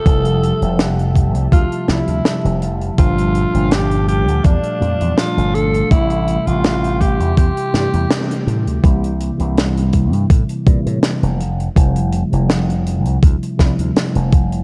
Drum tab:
HH |xxxxxxxxxxxxxxxx|xxxxxxxxxxxxxxxx|xxxxxxxxxxxxxxxx|xxxxxxxxxxxxxxxx|
SD |----o-----o-o---|----o-------o---|----o-----o-o---|----o-------o---|
BD |o-----o-o-------|o-------o-------|o-----o-o-------|o-----o-o-o-----|

HH |xxxxxxxxxxxxxxxx|
SD |----o-----o-o---|
BD |o-------o-o---o-|